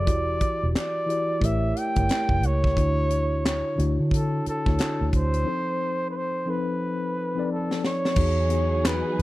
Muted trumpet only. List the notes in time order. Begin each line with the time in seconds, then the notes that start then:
Already playing: D5
0.79 D5
1.45 E5
1.79 G5
2.46 C#5
3.47 C#5
4.15 A4
4.49 A4
5.16 C5
6.11 B4
6.17 C5
6.50 B4
7.52 A4
7.86 C#5
8.87 B4